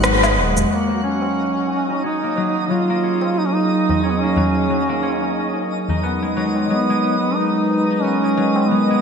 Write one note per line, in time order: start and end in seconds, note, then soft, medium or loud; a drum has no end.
0.00 0.39 G#1 loud
0.00 0.69 F#3 medium
0.00 0.22 G#3 medium
0.00 0.71 G#3 medium
0.00 0.37 B3 medium
0.00 0.71 D#4 medium
0.00 1.89 D#4 medium
0.00 0.72 F#4 medium
0.00 0.71 A#4 medium
0.00 0.71 B4 medium
0.00 0.71 F#5 medium
0.00 0.73 F#5 medium
0.00 cross-stick loud
0.00 shaker medium
0.22 0.76 G#3 loud
0.22 tabla tin soft
0.22 low woodblock medium
0.22 shaker soft
0.37 0.65 D#1 medium
0.37 0.95 B3 medium
0.57 tabla ge medium
0.57 shaker medium
0.69 2.36 F#3 medium
0.69 6.04 F#3 medium
0.69 1.02 A#3 medium
0.69 9.01 D#4 medium
0.69 9.01 D#5 medium
0.88 2.23 A#3 medium
0.88 tabla tin medium
1.03 2.03 C#4 medium
1.03 2.00 C#4 medium
1.03 9.01 D#4 medium
1.22 tabla na medium
1.22 tabla tin soft
1.35 8.19 G#4 medium
1.35 9.01 A#4 medium
1.69 9.01 D#5 medium
1.89 3.89 D#4 medium
1.89 tabla na soft
1.89 tabla tin medium
2.04 3.03 C#4 medium
2.04 2.73 D#4 medium
2.23 2.89 A#3 medium
2.36 2.69 F#3 medium
2.36 tabla tin medium
2.70 4.35 F#3 medium
2.70 3.40 F4 medium
2.90 4.22 A#3 medium
3.03 4.03 C#4 medium
3.21 tabla na medium
3.21 tabla tin medium
3.39 3.47 D#4 medium
3.46 3.56 C#4 medium
3.54 4.04 D#4 loud
3.54 tabla tin medium
3.89 5.89 D#4 medium
3.89 tabla na medium
3.89 tabla tin soft
3.89 tabla ge medium
4.03 5.02 C#4 medium
4.03 4.12 C#4 medium
4.10 4.21 B3 medium
4.19 4.89 A#3 medium
4.19 5.70 C#4 medium
4.36 4.69 F#3 medium
4.36 tabla ge medium
4.55 tabla tin medium
4.70 6.09 F#3 medium
4.89 6.09 A#3 medium
5.03 7.93 C#4 medium
5.03 tabla na medium
5.56 tabla tin soft
5.89 7.90 D#4 medium
5.89 tabla ge medium
6.03 9.01 G#3 medium
6.03 7.03 B3 medium
6.21 6.89 G#3 medium
6.21 tabla tin medium
6.33 6.69 F#3 medium
6.33 9.01 B4 medium
6.55 tabla na medium
6.55 tabla tin soft
6.70 8.36 F#3 medium
6.70 7.37 B3 medium
6.90 8.22 G#3 medium
7.04 8.04 B3 medium
7.22 tabla na soft
7.22 tabla tin medium
7.35 8.03 D#4 loud
7.69 tabla tin soft
7.90 9.01 D#4 medium
8.02 9.01 B3 medium
8.02 8.70 C#4 medium
8.23 8.89 G#3 medium
8.37 8.70 F#3 medium
8.56 tabla na medium
8.56 tabla tin medium
8.68 9.01 F#3 medium
8.68 9.01 B3 medium
8.89 9.01 G#3 medium
8.89 tabla tin medium